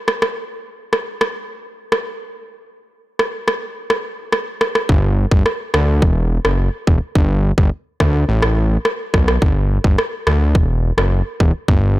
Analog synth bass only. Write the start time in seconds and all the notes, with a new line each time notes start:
4.89 G1
5.31 G1
5.74 D2
6.02 E1
6.45 F#1
6.87 E1
7.15 G1
7.58 G1
8.00 D2
8.29 A1
9.14 B1
9.42 G1
9.84 G1
10.27 D2
10.55 E1
10.98 F#1
11.40 E1
11.68 G1